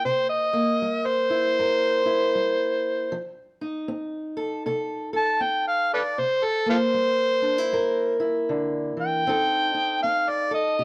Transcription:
Already playing: A#3
0.05 C3 C5
0.30 D#5
0.53 A#3
0.82 G3
1.06 C5
1.30 E4
1.59 G2 A#4
2.06 E4
2.35 G3
3.12 F3
3.61 D#4
3.88 C4
4.37 A4
4.66 C3 A4
5.13 A4 A5
5.40 C4 G5
5.68 F5
5.94 A4 B4 D5
6.18 C3 C5
6.45 A4
6.66 A#3 F4 A4 C5
6.94 G3
7.42 D4
7.58 E4
7.73 G2 A#4
8.20 E4
8.49 D3
8.97 E3
9.01 G5
9.27 F3 C4 D#4 A4
9.75 D#4
10.03 C4 F5
10.29 D5
10.51 A4 D#5
10.79 C3 G4

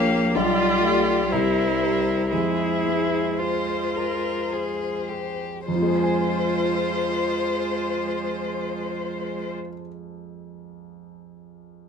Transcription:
Already playing: A#1 F3 A#3 F4 G4 C#5 F5
0.35 B1 G3 F4 G4 D5
0.82 A3 G4 D5
1.29 G3 E4 A#4 C5
1.33 C2
1.82 G4 C5
2.30 F2 G#3 E4 G#4 C5
2.86 G#3
3.39 F4 C5
3.96 G#4 A#4
4.52 G#4 C5
5.09 G4 G#4
5.66 F2 G#3 F4 C5
5.75 F3
5.82 G#3
5.88 G#4
5.96 C5
6.03 G#5

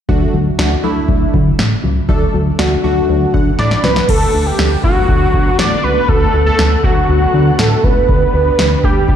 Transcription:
0.09 D2 F#3 A3 D4 F#4, kick
0.34 D2 F#3
0.59 D2 A3 D4 F#4, snare
0.84 D2 F#3 A3 D4 E4
1.08 D2 F#3, kick
1.34 D3 F#3, kick
1.59 A2, snare
1.84 C#2 F#3
2.09 D2 F#3 A3 D4 A4, kick
2.34 D2 F#3
2.59 D2 A3 D4 F#4, snare
2.84 D2 F#3 A3 D4 F#4
3.09 D2 F#3
3.34 D3 F#3 F#5, kick
3.59 A2 D5 B5, snare
3.71 snare
3.84 C#2 F#3 B4, snare
3.96 snare
4.09 D2 D3 A3 B3 A4 F#5, kick, crash
4.34 D2
4.46 G4
4.59 D2, snare
4.84 D2 F#4, kick
5.08 D2, kick
5.34 D3, kick
5.59 A2 D5, snare
5.84 C#2 B4
6.09 D2 A4, kick
6.34 D2
6.46 A4
6.59 D2, snare
6.84 D2 F#4, kick
7.09 D2
7.34 D3
7.59 A2 A4, snare
7.84 C#2 B4, kick
8.09 D2 D3 D4 G4 B4, kick
8.34 D2
8.59 D2, snare
8.84 D2 G4, kick
9.08 D2 G4, kick

